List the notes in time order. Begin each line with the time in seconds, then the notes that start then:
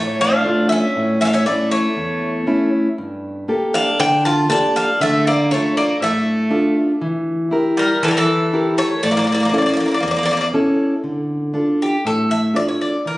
Already playing: A2 A3 C#5
0.21 D4 F5
0.44 A3 D4 F4
0.69 C#4 E5
0.96 A2
1.21 C#4 E5
1.25 D4 F5
1.33 C#4 E5
1.46 A3 C#4 E4 D5
1.71 A3 C#5
1.97 E2
2.47 A3 C#4 E4
2.98 G2
3.48 A#3 G4 A4
3.74 D4 F5
4.00 D3 D4 G5
4.25 F4 A5
4.49 A#3 D4 G4 A4 A5
4.76 D4 F5
5.00 D3 A3 E5
5.27 A#3 D5
5.51 A3 D4 F4 A4 C#5
5.77 A#3 D5
6.00 A2 A3 E5
6.50 D4 F4 A4
7.02 E3
7.51 E4 G4 A#4
7.77 G3 A#4
8.03 E3 A4
8.08 G3 A#4
8.17 E3 A4
8.53 E4 G4 A#4
8.78 A3 C#5
9.03 A2 A3 D5
9.11 A#3 D5
9.17 A#3 D5
9.24 A#3 D5
9.32 A#3 D5
9.40 A#3 D5
9.45 A#3
9.49 C#4 D5
9.54 A#3 E4 A4
9.58 A#3 D5
9.66 A#3 D5
9.73 A#3 D5
9.80 D5
9.86 A#3 D5
9.91 A#3 D5
10.00 E2 A#3 D5
10.08 A#3 D5
10.16 A#3 D5
10.23 A#3 D5
10.31 A#3 D5
10.37 A#3 D5
10.54 C#4 E4 A4
11.04 D3
11.54 D4 F4 A4
11.82 G4
12.05 A2 A4
12.31 E5
12.54 D4 F4 A4 D5
12.68 C#5
12.81 D5
13.06 E3 A#4